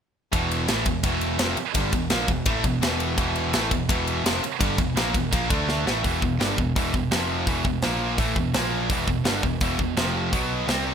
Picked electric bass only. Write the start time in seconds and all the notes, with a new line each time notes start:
0.33 E1
0.69 A1
0.86 E1
1.03 E1
1.39 F1
1.57 muted picked electric bass stroke
1.75 G1
1.93 E1
2.10 A#1
2.28 E1
2.46 A1
2.65 E1
2.83 E1
3.18 E1
3.53 A1
3.71 E1
3.89 E1
4.24 F1
4.42 muted picked electric bass stroke
4.61 G1
4.78 E1
4.95 A#1
5.14 E1
5.32 A#1
5.50 D2
5.86 A1
6.04 E1
6.22 E1
6.40 G1
6.58 E1
6.76 E1
6.94 E1
7.10 F1
7.47 E1
7.65 E1
7.83 A#1
8.19 A1
8.36 E1
8.56 A#1
8.90 E1
9.07 E1
9.24 G1
9.43 E1
9.62 E1
9.79 E1
9.96 F1
10.33 B1
10.68 C2